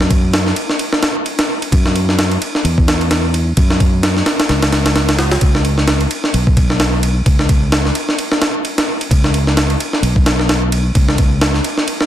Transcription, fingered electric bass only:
0.00 0.51 F#2 loud
1.72 2.36 F#2 loud
2.64 3.51 E2 loud
3.57 4.21 F#2 loud
4.49 5.36 C#2 medium
5.42 6.05 C#2 loud
6.34 7.21 B1 loud
7.26 7.90 C#2 loud
9.11 9.74 C#2 loud
10.02 10.89 B1 loud
10.95 11.59 C#2 loud

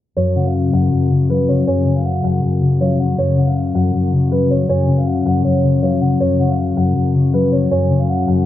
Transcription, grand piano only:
0.17 0.43 C#5 medium
0.45 0.71 F5 medium
0.73 1.26 F#5 medium
1.30 1.45 B4 medium
1.49 1.64 C#5 medium
1.67 1.94 C#5 loud
1.96 2.22 F5 medium
2.24 2.77 F#5 medium
2.81 2.96 C#5 medium
3.18 3.45 C#5 medium
3.47 3.73 F5 medium
3.75 4.28 F#5 medium
4.32 4.47 B4 medium
4.50 4.66 C#5 medium
4.69 4.96 C#5 loud
4.98 5.24 F5 medium
5.26 5.79 F#5 medium
5.83 5.98 C#5 medium
6.20 6.47 C#5 medium
6.49 6.75 F5 medium
6.77 7.30 F#5 medium
7.34 7.49 B4 medium
7.52 7.68 C#5 medium
7.71 7.98 C#5 loud
8.00 8.26 F5 medium
8.28 8.46 F#5 medium

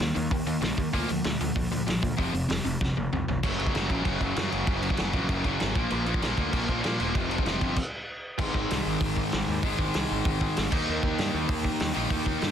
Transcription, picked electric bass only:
0.00 0.10 D#2 medium
0.16 0.26 D#2 loud
0.31 0.41 D#2 medium
0.46 0.56 D#2 loud
0.61 0.71 A#1 medium
0.78 0.88 D#2 medium
0.94 1.03 D2 loud
1.10 1.19 D2 medium
1.26 1.35 D2 medium
1.41 1.50 D2 medium
1.56 1.66 D2 medium
1.71 1.81 D2 medium
1.87 1.96 A1 medium
2.03 2.12 D2 medium
2.19 2.28 F1 medium
2.33 2.43 F1 medium
2.48 2.58 F1 medium
2.65 2.75 F1 medium
2.81 2.91 F1 medium
2.97 3.06 F1 loud
3.13 3.22 C2 medium
3.28 3.38 G1 medium
3.44 3.65 F#1 medium
3.75 3.86 F#1 medium
3.90 4.01 A#1 medium
4.05 4.16 F#1 medium
4.21 4.32 F#1 medium
4.37 4.48 F#2 medium
4.52 4.63 F#1 medium
4.67 4.89 F#1 medium
4.99 5.10 F#1 loud
5.14 5.24 A#1 medium
5.29 5.40 F#1 medium
5.45 5.56 F#1 loud
5.62 5.72 G#1 medium
5.75 5.86 A#1 medium
5.92 6.13 A#1 loud
6.22 6.33 A#1 loud
6.37 6.48 D2 loud
6.53 6.64 A#1 medium
6.69 6.80 A#1 medium
6.86 6.96 A#2 medium
7.00 7.11 E1 medium
7.16 7.37 F1 loud
7.46 7.57 F1 loud
7.61 7.72 G1 medium
8.39 8.48 G#1 loud
8.54 8.64 G#1 medium
8.71 8.81 C2 loud
8.86 8.95 G#1 medium
9.01 9.20 G#1 medium
9.33 9.42 G#1 medium
9.48 9.58 D#2 medium
9.63 9.73 G#1 loud
9.79 9.88 G#1 medium
9.95 10.04 C2 medium
10.11 10.20 G#1 loud
10.25 10.44 G#1 loud
10.58 10.67 G#1 medium
10.72 10.81 D#2 medium
10.89 10.98 D#2 loud
11.03 11.13 D#2 medium
11.19 11.28 G2 loud
11.35 11.44 D#2 loud
11.49 11.68 D#2 medium
11.82 11.91 D#2 medium
11.96 12.06 A#1 medium
12.11 12.20 D#2 loud
12.27 12.36 D#2 medium
12.43 12.51 G2 medium

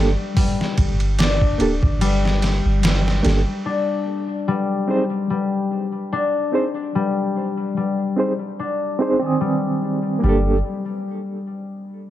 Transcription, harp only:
0.00 0.35 G3 loud
0.00 1.18 D4 loud
0.36 2.00 G3 medium
1.19 3.65 D4 loud
2.01 2.82 G3 loud
2.83 3.71 G3 medium
3.65 6.12 D4 medium
4.48 5.29 G3 loud
5.30 6.94 G3 medium
6.13 8.59 D4 loud
6.95 7.76 G3 loud
7.77 9.39 G3 medium
8.59 9.38 D4 medium
9.41 10.22 G3 medium
10.23 10.62 G3 medium

